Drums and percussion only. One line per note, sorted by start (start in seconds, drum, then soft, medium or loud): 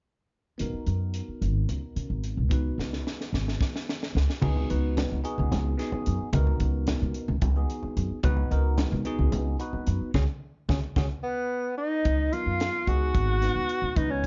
0.59 closed hi-hat medium
0.87 closed hi-hat soft
1.14 closed hi-hat medium
1.42 closed hi-hat soft
1.69 closed hi-hat medium
1.97 closed hi-hat soft
2.24 closed hi-hat medium
2.51 kick medium
2.51 closed hi-hat medium
2.79 snare soft
2.93 snare soft
3.07 snare soft
3.21 snare soft
3.34 snare medium
3.48 snare soft
3.61 kick medium
3.61 snare medium
3.76 snare medium
3.89 snare medium
4.03 snare medium
4.17 snare medium
4.30 snare medium
4.42 kick medium
4.42 crash medium
4.42 high conga medium
4.42 low conga soft
4.56 low conga medium
4.70 closed hi-hat medium
4.70 low conga soft
4.97 snare loud
4.97 closed hi-hat medium
4.97 low conga medium
5.25 closed hi-hat medium
5.38 high conga medium
5.52 snare soft
5.52 closed hi-hat medium
5.52 low conga medium
5.78 snare soft
5.78 closed hi-hat medium
5.78 low conga soft
5.92 low conga medium
6.06 closed hi-hat medium
6.33 kick loud
6.33 closed hi-hat medium
6.33 high conga medium
6.33 low conga soft
6.47 low conga medium
6.60 kick medium
6.60 closed hi-hat medium
6.60 low conga soft
6.87 snare loud
6.87 closed hi-hat medium
6.87 low conga medium
7.14 closed hi-hat medium
7.28 high conga medium
7.42 kick loud
7.42 closed hi-hat medium
7.42 low conga medium
7.69 closed hi-hat medium
7.69 low conga soft
7.83 low conga medium
7.97 closed hi-hat medium
8.23 kick loud
8.23 closed hi-hat medium
8.23 high conga medium
8.23 low conga soft
8.37 low conga medium
8.51 closed hi-hat soft
8.51 low conga soft
8.78 snare loud
8.78 closed hi-hat medium
8.78 low conga medium
9.05 closed hi-hat medium
9.19 high conga medium
9.32 closed hi-hat medium
9.32 low conga medium
9.59 closed hi-hat medium
9.59 low conga soft
9.73 low conga medium
9.87 closed hi-hat medium
10.14 kick medium
10.14 snare medium
10.14 high conga medium
10.69 kick medium
10.69 snare medium
10.69 high conga medium
10.96 kick medium
10.96 snare medium
10.96 high conga medium
12.05 kick medium
12.05 closed hi-hat medium
12.33 closed hi-hat soft
12.60 snare medium
12.60 closed hi-hat medium
12.87 kick medium
12.87 closed hi-hat soft
13.15 kick medium
13.15 closed hi-hat medium
13.42 snare soft
13.42 closed hi-hat soft
13.69 closed hi-hat medium
13.96 kick medium
13.96 closed hi-hat medium